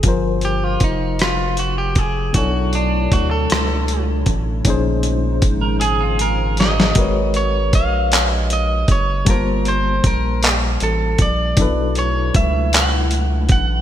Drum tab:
HH |x-x-x-x-x-x-|x-x-x-x-x-x-|x-x-x-x-x-x-|x-x-x-x-x-x-|
CP |------------|------------|------------|------x-----|
SD |------r-----|------r-----|----------oo|------------|
BD |o---o-----o-|o---o-----o-|o---o-------|o---o-----o-|

HH |x-x-x-x-x-x-|x-x-x-x-x-x-|
CP |------x-----|------x-----|
SD |------------|------------|
BD |o---o-----o-|o---o-----o-|